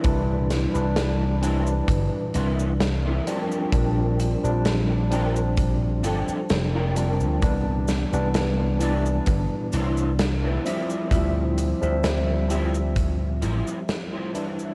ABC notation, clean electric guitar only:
X:1
M:4/4
L:1/16
Q:"Swing 16ths" 1/4=65
K:C
V:1 name="Clean electric guitar"
[CDEB]4 z2 [CDEc] z3 [CDEB]2 z [CDEB] [DFG_B]2- | [DFG_B]4 z2 [DFGB] z3 [DFGA]2 z [DFGB]3 | z6 [DEBd] z3 [DEBc]2 z [DEBc] [EFGc]2- | [EFGc]4 z2 [EFGc] z3 [EFGc]2 z [EFGc] [DEBc]2 |]